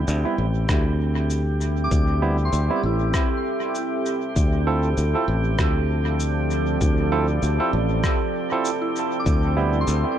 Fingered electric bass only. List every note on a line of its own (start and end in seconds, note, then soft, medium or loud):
0.08 0.23 D2 loud
0.38 0.66 A1 medium
0.69 1.89 D2 medium
1.91 2.50 D2 loud
2.53 2.68 D2 medium
2.83 3.11 A1 medium
4.36 4.95 D2 medium
4.97 5.13 D2 loud
5.28 5.56 A1 medium
5.59 6.79 D2 medium
6.81 7.40 D2 loud
7.43 7.58 D2 medium
7.73 8.01 A1 medium
9.26 9.85 D2 loud
9.88 10.03 D2 medium